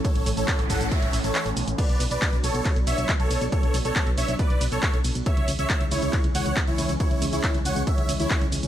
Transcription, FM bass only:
\new Staff \with { instrumentName = "FM bass" } { \clef bass \time 4/4 \key b \dorian \tempo 4 = 138 r16 a,,16 a,,16 a,,16 r16 a,,16 a,,16 a,,16 r16 a,,16 a,,16 a,,16 r16 a,,16 b,,16 a,,16 | r16 b,,16 b,,16 b,,16 r16 b,,16 b,,16 b,,16 r16 b,,16 b,,16 b,,16 r16 b,,16 b,,16 b,,16 | r16 b,,16 b,,16 b,,16 r16 b,,16 b,,16 b,,16 r16 b,,16 b,,16 b,,16 r16 b,,16 b,,16 b,,16 | r16 cis,16 cis,16 cis,16 r16 cis,16 cis,16 cis,16 r16 cis,16 cis,16 cis,16 r16 cis,16 cis,16 cis,16 |
r16 cis,16 cis,16 cis,16 r16 cis,16 cis,16 cis,16 r16 cis,16 cis,16 d,16 r16 cis,16 cis,16 cis,16 | }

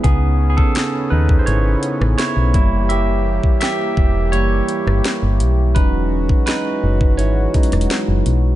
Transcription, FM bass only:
\new Staff \with { instrumentName = "FM bass" } { \clef bass \time 4/4 \key fis \dorian \tempo 4 = 84 cis,4 r8 dis,8 gis,,8 r16 a,,16 r16 b,,16 fis,,8~ | fis,,4 r8 e,,8 fis,,8 r16 g,,16 r16 g,,16 b,,8 | e,,4 r8 fis,,8 gis,,8 r16 e,,16 r16 fis,,16 b,,8 | }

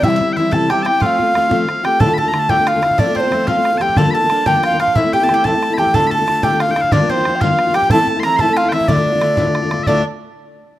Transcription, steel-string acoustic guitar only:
\new Staff \with { instrumentName = "Steel-string acoustic guitar" } { \time 6/8 \key f \major \tempo 4. = 122 <c e g c' e'>8 <g c' e'>8 <e g c' e'>8 <c e g c' e'>8 <e g c' e'>8 <g c' e'>8 | <f a c' f'>8 <a c' f'>8 <f a c' f'>8 <f a c' f'>8 <f a c' f'>8 <a c' f'>8 | \key d \minor <d, a, d a d' f'>16 <d a d' f'>8 <d a d' f'>16 <d a d' f'>8 <d, a, d a d' f'>16 <d a d' f'>8 <d a d' f'>16 <d a d' f'>8 | <f a c' f'>16 <a c' f'>8 <a c' f'>16 <f a c' f'>8 <f a c' f'>16 <a c' f'>8 <a c' f'>16 <f a c' f'>8 |
<g, d f bes d' f'>16 <f bes d' f'>8 <f bes d' f'>16 <f bes d' f'>8 <g, d f bes d' f'>16 <f bes d' f'>8 <f bes d' f'>16 <f bes d' f'>8 | <a, e a c' e'>16 <a c' e'>8 <a c' e'>16 <e a c' e'>8 <a, e a c' e'>16 <a c' e'>8 <a c' e'>16 <e a c' e'>8 | <d, a, d a d' f'>16 <d a d' f'>8 <d a d' f'>16 <d a d' f'>8 <d, a, d a d' f'>16 <d a d' f'>8 <d a d' f'>16 <d a d' f'>8 | <g, d f bes d' f'>16 <f bes d' f'>8 <f bes d' f'>16 <f bes d' f'>8 <g, d f bes d' f'>16 <f bes d' f'>8 <f bes d' f'>16 <f bes d' f'>8 |
<a, e a c' e'>16 <a c' e'>8 <a c' e'>16 <e a c' e'>8 <a, e a c' e'>16 <a c' e'>8 <a c' e'>16 <e a c' e'>8 | <d, a, d a d' f'>16 <d a d' f'>8 <d a d' f'>16 <d a d' f'>8 <d, a, d a d' f'>16 <d a d' f'>8 <d a d' f'>16 <d a d' f'>8 | <d, a, d a d' f'>8 r2 r8 | }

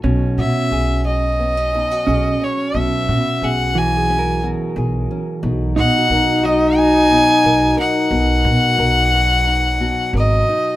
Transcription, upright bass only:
\new Staff \with { instrumentName = "Upright bass" } { \clef bass \time 4/4 \key fis \mixolydian \tempo 4 = 89 b,,8 b,8 b,,2 b,,8 r8 | b,,8 b,8 b,,2 b,,8 r8 | b,,8 b,8 b,,2 b,,8 r8 | b,,8 b,8 b,,2 gis,,8 r8 | }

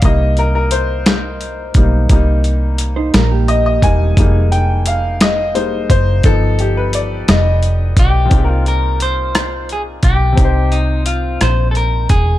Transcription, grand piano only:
<<
  \new Staff \with { instrumentName = "Grand piano" } { \time 6/8 \key c \phrygian \tempo 4. = 58 ees''8 bes'16 bes'16 c''4. r8 | r2 ees''16 ees''16 aes''8~ | aes''8 g''8 f''8 ees''8 c''8 c''8 | a'8 g'16 b'16 d''8 ees''4. |
<bes, c' ees' aes' bes' g''>2. | <c c' ees' c'' g''>2. | }
  \new Staff \with { instrumentName = "Grand piano" } { \time 6/8 \key c \phrygian <g bes ees'>2~ <g bes ees'>8 <g bes ees'>8 | <g bes ees'>2~ <g bes ees'>8 <g bes ees'>8 | <g aes bes ees'>2 <g aes bes ees'>8 r8 | <f b ees'>4. r4. |
r2. | r2. | }
>>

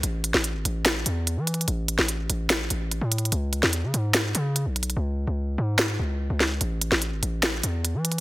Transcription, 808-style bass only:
\new Staff \with { instrumentName = "808-style bass" } { \clef bass \time 4/4 \key a \lydian \tempo 4 = 146 a,,8. a,,8 gis,,16 a,,4 e,8. e8. | a,,8. a,,8. a,,4 a,,8. a,8. | cis,8. e,8 cis16 gis,4 cis8. b,,8. | cis,8. cis,8. gis,4 cis,8. cis,8. |
a,,8. a,,8 gis,,16 a,,4 e,8. e8. | }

